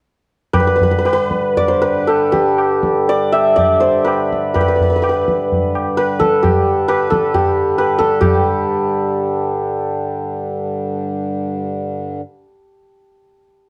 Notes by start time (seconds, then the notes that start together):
0.53 G2 D3 B4, tabla na, tabla ge
0.60 B4
0.67 B4
0.75 B4
0.80 B4, tabla ge
0.91 B4
0.98 B4
1.05 B4, tabla na
1.13 B4
1.31 tabla ke
1.57 D5, tabla tin, tabla ge
1.68 C5
1.82 B4, tabla na
2.07 A4, tabla na
2.32 G4, tabla ke
2.58 tabla na
2.83 tabla ke
3.08 D5, tabla tin
3.33 E5, tabla na
3.56 D5, tabla na, tabla ge
3.81 C5, tabla te
4.05 B4, tabla na
4.33 tabla ke
4.55 B4, tabla na, tabla ge
4.61 B4
4.69 B4
4.76 B4
4.81 B4, tabla ge
4.90 B4
4.96 B4
5.02 B4, tabla na
5.09 B4
5.28 tabla ke
5.52 tabla tin, tabla ge
5.75 tabla na
5.97 B4, tabla na
6.20 A4, tabla ke
6.43 G4, tabla na, tabla ge
6.88 B4, tabla na
7.10 A4, tabla ke
7.34 G4, tabla na, tabla ge
7.78 B4, tabla na
7.98 A4, tabla ke
8.20 G2 D3 G4, tabla na, tabla ge